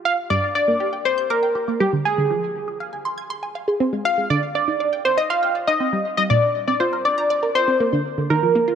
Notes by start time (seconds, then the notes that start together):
0.05 F5
0.30 G2 D5
0.55 D5
0.68 A#3
0.80 G4
0.93 G5
1.05 C5 D6
1.18 G6
1.30 A#4 D6
1.43 G5
1.55 G4
1.68 A#3
1.80 G3 G4
1.93 D3
2.05 G#4
2.18 D3
2.30 F3
2.68 G#4
2.80 F5
2.93 G#5
3.05 C6
3.18 G#6
3.30 C6
3.43 G#5
3.55 F5
3.68 G#4
3.80 C4
3.93 G#3
4.05 F5
4.18 G#3
4.30 D3 D5
4.55 D5
4.68 D#4
4.80 D5
4.93 G5
5.05 C5 C6
5.18 D#5 D#6
5.30 F5 C6
5.43 G5
5.55 D5
5.67 D#4 D#5
5.80 C4
5.93 G3
6.17 G3 D#5
6.30 A#2 D5
6.68 C4 D5
6.80 F4 C5
6.93 A#4
7.05 D5
7.18 A#5
7.30 D5
7.43 A#4
7.55 F4 C5
7.68 C4
7.80 A#3
7.93 D3
8.18 D3
8.30 D#3 A#4
8.43 F3
8.55 A#3
8.68 F4